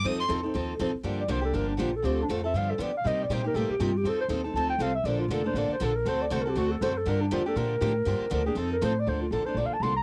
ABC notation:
X:1
M:4/4
L:1/8
Q:"Swing" 1/4=239
K:Fmix
V:1 name="Violin"
e' c' z6 | [K:Gm] z8 | z8 | z8 |
z8 | z8 | z8 | z8 |
z8 | [K:Bb] z8 |]
V:2 name="Clarinet"
z8 | [K:Gm] z d c A B D F A | G D z =e f A d f | e d c B A G F G |
A c z2 a g f =e | d F A c d c A B | c d (3c B G ^F A c A | B D F A B4- |
B2 B _A =A B c d | [K:Bb] c F A c (3d f a c' b |]
V:3 name="Steel-string acoustic guitar"
[F,CEA] z [F,CEA] [CEA] [F,CEA] z [F,CEA] z | [K:Gm] [D,F,B,DG] z [D,F,B,DG] [B,DG] [D,F,B,DG] z [D,F,B,DG] z | [D,A,CFA] z [D,A,CFA] [CFA] [D,F,=B,DG] z [D,F,B,DG] z | [C,G,B,EG] z [C,G,B,EG] [B,EG] [C,G,B,EG] z [C,G,B,EG] z |
[F,CEA] z [F,CEA] [CEA] [F,CEA] z [F,CEA] z | [D,F,B,DA] z [D,F,B,DA] [B,DA] [D,F,B,DA] z [D,F,B,DA] z | [D,A,C^FA] z [D,A,CFA] [CFA] [D,A,CFA] z [D,A,CFA] z | [D,F,B,DG] z [D,F,B,DG] [B,DG] [D,F,B,DG] z [D,F,B,DG] z |
[D,F,B,DG] z [D,F,B,DG] [B,DG] [F,CEA] z [F,CEA] z | [K:Bb] [D,F,B,DA] z [D,F,B,DA] [B,DA] [D,F,B,DA] z [D,F,B,DA] z |]
V:4 name="Steel-string acoustic guitar"
[F,CEA] z [F,CEA] z [F,CEA] z [F,CEA] z | [K:Gm] [D,F,B,DG] z [D,F,B,DG] z [D,F,B,DG] z [D,F,B,DG] z | [D,F,CDA] z [D,F,CDA] z [D,F,=B,DG] z [D,F,B,DG] z | [C,G,B,EG] z [C,G,B,EG] z [C,G,B,EG] z [C,G,B,EG] z |
[F,CEA] z [F,CEA] z [F,CEA] z [F,CEA] z | [D,F,B,DA] z [D,F,B,DA] z [D,F,B,DA] z [D,F,B,DA] z | [D,A,C^FA] z [D,A,CFA] z [D,A,CFA] z [D,A,CFA] z | [D,F,B,DG] z [D,F,B,DG] z [D,F,B,DG] z [D,F,B,DG] z |
[D,F,B,DG] z [D,F,B,DG] z [F,CEA] z [F,CEA] z | [K:Bb] z8 |]
V:5 name="Upright bass" clef=bass
F,,2 =E,,2 _E,,2 F,, z | [K:Gm] G,,2 C,,2 G,,,2 B,,,2 | D,,2 F,,2 G,,2 D,2 | C,2 B,,2 A,, z G,,2 |
F,,2 E,,2 D,,2 C,,2 | B,,,2 F,,,2 A,,, z B,,,2 | D,,2 C,,2 D,,2 ^F,,2 | G,,2 F,,2 B,,2 A,,2 |
G,, z D,,2 F,,2 A,,2 | [K:Bb] D,,2 A,,, z B,,, z C,,2 |]